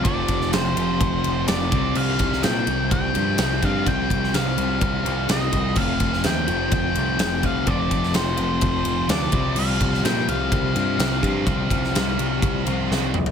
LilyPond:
<<
  \new Staff \with { instrumentName = "Lead electric guitar" } { \time 4/4 \key c \dorian \tempo 4 = 126 d''4 c''2 d''4 | f''4 g''4 g''4. f''8 | g''4 f''2 ees''4 | f''4 g''4 g''4. f''8 |
d''4 c''2 d''4 | f''4 g''8 f''2~ f''8~ | f''2. r4 | }
  \new Staff \with { instrumentName = "Distorted electric guitar" } { \time 4/4 \key c \dorian <f a c' f'>4. <f a c' f'>4. <f a c' f'>8 <c f g c' f'>8~ | <c f g c' f'>4 <c f g c' f'>4. <c f g c' f'>4 <c f g c' f'>8~ | <c f g c' f'>4 <c f g c' f'>4. <c f g c' f'>4 r8 | <f a c' f'>4. <f a c' f'>4. <f a c' f'>4 |
<f a c' f'>4. <f a c' f'>4. <f a c' f'>8 <c f g c' f'>8~ | <c f g c' f'>4 <c f g c' f'>4. <c f g c' f'>4 <c f g c' f'>8~ | <c f g c' f'>4 <c f g c' f'>4. <c f g c' f'>4 r8 | }
  \new Staff \with { instrumentName = "Distorted electric guitar" } { \clef bass \time 4/4 \key c \dorian <f, c f>2.~ <f, c f>8 <c g c'>8~ | <c g c'>2. <c g c'>8 <c g c'>8~ | <c g c'>2. <c g c'>8 r8 | <f, c f>2.~ <f, c f>8 <f, c f>8 |
<f, c f>2.~ <f, c f>8 <c g c'>8~ | <c g c'>2. <c g c'>8 <c g c'>8~ | <c g c'>2. <c g c'>8 r8 | }
  \new Staff \with { instrumentName = "Overdriven electric guitar" } { \clef bass \time 4/4 \key c \dorian <f, c f>4. <f, c f>4. <f, c f>8 <c g c'>8~ | <c g c'>4 <c g c'>4. <c g c'>4 <c g c'>8~ | <c g c'>4 <c g c'>4. <c g c'>4 r8 | <f, c f>4. <f, c f>4. <f, c f>4 |
<f, c f>4. <f, c f>4. <f, c f>8 <c g c'>8~ | <c g c'>4 <c g c'>4. <c g c'>4 <c g c'>8~ | <c g c'>4 <c g c'>4. <c g c'>4 r8 | }
  \new Staff \with { instrumentName = "Picked electric bass" } { \clef bass \time 4/4 \key c \dorian f,,8 f,,8 f,,8 f,,8 f,,8 f,,8 f,,8 c,8 | c,8 c,8 bes,8 c,8 c,8 g,8 c,8 g,8 | c,8 c,8 c,8 c,8 c,8 c,8 c,8 c,8 | f,,8 f,,8 ees,8 f,,8 f,,8 c,8 f,,8 c,8 |
f,,8 f,,8 f,,8 f,,8 f,,8 f,,8 d,8 c,8 | c,8 c,8 bes,8 c,8 c,8 g,8 c,8 g,8 | c,8 c,8 c,8 c,8 c,8 c,8 c,8 c,8 | }
  \new DrumStaff \with { instrumentName = "Drums" } \drummode { \time 4/4 <bd cymr>8 <bd cymr>16 sn16 <cymr sn>8 cymr8 <bd cymr>8 cymr8 <cymr sn>8 <bd cymr>8 | cymc8 <bd cymr>16 sn16 <cymr sn>8 cymr8 <bd cymr>8 cymr8 <cymr sn>8 <bd cymr>8 | <bd cymr>8 <bd cymr>16 sn16 <cymr sn>8 cymr8 <bd cymr>8 cymr8 <cymr sn>8 <bd cymr>8 | <cymc bd>8 <bd cymr>16 sn16 <cymr sn>8 cymr8 <bd cymr>8 cymr8 <cymr sn>8 <bd cymr>8 |
<bd cymr>8 <bd cymr>16 sn16 <cymr sn>8 cymr8 <bd cymr>8 cymr8 <cymr sn>8 <bd cymr>8 | cymc8 <bd cymr>16 sn16 <cymr sn>8 cymr8 <bd cymr>8 cymr8 <cymr sn>8 <bd cymr>8 | <bd cymr>8 <bd cymr>16 sn16 <cymr sn>8 cymr8 <bd cymr>8 cymr8 sn8 toml16 tomfh16 | }
>>